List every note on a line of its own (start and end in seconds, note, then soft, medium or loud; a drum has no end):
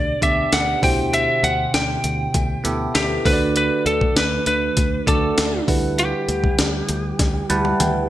0.00 0.14 D2 loud
0.00 0.82 B2 medium
0.00 0.83 D3 medium
0.00 0.22 D4 medium
0.00 0.22 G4 medium
0.00 0.23 D5 medium
0.21 0.44 D2 medium
0.21 0.83 B3 medium
0.21 0.83 D4 medium
0.21 0.82 G4 medium
0.21 0.83 D5 medium
0.21 0.54 E5 medium
0.21 kick medium
0.21 closed hi-hat medium
0.52 0.74 D2 medium
0.52 0.81 F#5 medium
0.52 snare loud
0.52 closed hi-hat medium
0.82 1.27 D2 medium
0.82 1.81 B2 medium
0.82 1.70 D3 medium
0.82 1.82 E4 medium
0.82 1.82 G4 medium
0.82 1.82 C5 medium
0.82 1.15 G5 medium
0.82 kick loud
0.82 open hi-hat medium
1.13 1.45 E5 loud
1.13 closed hi-hat medium
1.43 1.65 D2 medium
1.43 1.74 F#5 medium
1.43 closed hi-hat medium
1.74 1.96 D2 medium
1.74 2.99 G5 medium
1.74 snare loud
1.74 closed hi-hat medium
2.04 2.26 D2 medium
2.04 closed hi-hat medium
2.34 2.57 D2 loud
2.34 kick medium
2.34 closed hi-hat medium
2.64 2.87 D2 medium
2.64 3.25 B3 medium
2.64 3.25 E4 medium
2.64 3.25 G4 medium
2.64 3.26 A4 medium
2.64 closed hi-hat medium
2.95 3.17 D2 medium
2.95 3.27 G4 medium
2.95 snare loud
2.95 closed hi-hat medium
3.25 3.69 D2 medium
3.25 4.13 D3 medium
3.25 4.24 A3 medium
3.25 4.25 D4 medium
3.25 4.25 F#4 medium
3.25 3.54 B4 medium
3.25 3.33 C5 medium
3.25 kick loud
3.25 open hi-hat medium
3.33 4.28 D5 medium
3.56 3.86 B4 medium
3.56 closed hi-hat medium
3.86 4.08 D2 medium
3.86 4.15 A4 medium
3.86 closed hi-hat medium
4.01 kick medium
4.16 4.38 D2 loud
4.16 4.46 B4 medium
4.16 snare loud
4.16 closed hi-hat medium
4.46 4.68 D2 medium
4.46 5.08 B4 medium
4.46 closed hi-hat medium
4.77 4.99 D2 medium
4.77 kick medium
4.77 closed hi-hat medium
5.07 5.29 D2 medium
5.07 5.68 A3 medium
5.07 5.68 D4 medium
5.07 5.68 F#4 medium
5.07 5.64 A4 medium
5.07 5.68 D5 medium
5.07 kick medium
5.07 closed hi-hat medium
5.38 5.60 D2 medium
5.38 snare loud
5.38 closed hi-hat medium
5.68 6.12 D2 medium
5.68 6.55 D3 medium
5.68 6.67 G3 medium
5.68 6.67 E4 medium
5.68 6.67 B4 medium
5.68 6.67 F#5 medium
5.68 kick loud
5.68 open hi-hat medium
5.99 8.07 G4 loud
5.99 closed hi-hat medium
6.28 6.50 D2 medium
6.28 closed hi-hat medium
6.44 kick medium
6.59 6.81 D2 medium
6.59 snare loud
6.59 closed hi-hat medium
6.89 7.11 D2 medium
6.89 closed hi-hat medium
7.19 7.41 D2 loud
7.19 kick medium
7.19 snare medium
7.19 closed hi-hat medium
7.49 7.72 D2 medium
7.49 8.09 G3 medium
7.49 8.09 E4 medium
7.49 8.09 B4 medium
7.49 8.09 F#5 medium
7.49 7.78 A5 medium
7.49 closed hi-hat medium
7.65 high tom medium
7.80 8.09 D2 medium
7.80 8.08 G5 medium
7.80 closed hi-hat medium
7.80 mid tom medium